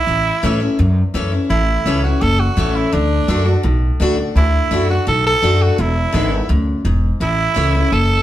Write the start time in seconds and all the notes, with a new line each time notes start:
Already playing: E4
0.07 A1 A2
0.43 A2 E3 A3 C#4 E4
0.60 C#4 E4
0.79 E2 F#2
1.14 F#2 E3 A3 C#4 E4
1.32 C#4 E4
1.50 A1 A2 E4
1.86 C#2 E3 A3 C#4 E4
2.03 C#4 E4 F#4
2.21 F#1 E2 A4
2.40 F#4
2.57 A1 E3 A3 C#4 E4
2.76 E4
2.92 D2 D3 D4
3.28 F#2 D3 A3 D4 F#4
3.45 D4 F#4
3.63 B1 A2
4.00 D2 D3 A3 D4 F#4
4.17 D4 F#4
4.35 D2 D3 E4
4.71 F#2 D3 A3 D4 F#4
4.89 D4 F#4
5.07 B1 A2 A4
5.27 A4
5.41 F#2 D3 A3 D4 F#4
5.62 F#4
5.78 E1 E2 E4
6.13 G#1 D3 G#3 B3 E4
6.31 B3 E4
6.49 D2 F#2
6.85 E1 G#2
7.20 A1 A2 E4
7.55 C#2 E3 A3 C#4 E4
7.74 C#4 E4
7.92 F#1 E2 A4